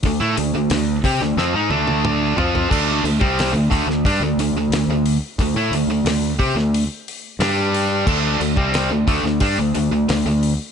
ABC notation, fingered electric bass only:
X:1
M:4/4
L:1/16
Q:1/4=90
K:Glyd
V:1 name="Fingered electric bass" clef=bass
D,, A,, D,, D,, D,,2 =C, D,, =F,, ^G,, D,,4 F,,2 | D,,2 D,, =C,,2 D,, D,, D,, G,, D,, D,, D,, D,, D,,2 z | D,, A,, D,, D,, D,,2 =C, D,,2 z3 G,,4 | D,,2 D,, =C,,2 D,, D,, D,, G,, D,, D,, D,, D,, D,,2 z |]